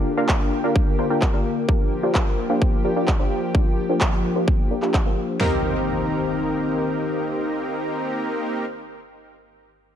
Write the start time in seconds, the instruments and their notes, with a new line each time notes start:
Already playing: analog synth pad D3 A#3 G4, supersaw synth A#3 D4 F4 A#4 D5
0.17 supersaw synth A#3 D4 F4 A#4 F5
0.29 kick, clap
0.64 supersaw synth A#3 D4 F4 A#4 F5
0.76 kick
0.99 supersaw synth A#3 D4 F4 A#4 C5
1.10 supersaw synth A#3 D4 F4 A#4 G5
1.22 kick, clap
1.34 supersaw synth A#3 D4 F4 A#4 F5
1.69 analog synth pad F3 G4, supersaw synth A#3 D4 F4 G4 A#4, kick
2.03 supersaw synth A#3 D4 F4 G4 C5
2.15 kick, clap
2.50 supersaw synth A#3 D4 F4 G4 C5
2.62 kick
2.85 supersaw synth A#3 D4 F4 G4 A#4
2.96 supersaw synth A#3 D4 F4 G4 D5
3.08 kick, clap
3.20 supersaw synth A#3 D4 F4 G4 C5
3.55 supersaw synth A#3 D4 F4 G4 A#4, kick
3.90 supersaw synth A#3 D4 F4 G4 C5
4.01 kick, clap
4.36 supersaw synth A#3 D4 F4 G4 C5
4.48 kick
4.71 supersaw synth A#3 D4 F4 G4 A#4
4.82 supersaw synth A#3 D4 F4 G4 D5, clap
4.94 kick, clap
5.06 supersaw synth A#3 D4 F4 G4 C5
5.41 analog synth pad D#3 C4 A#4, supersaw synth A#3 C4 D#4 G4 A#4, snare, floor tom, impact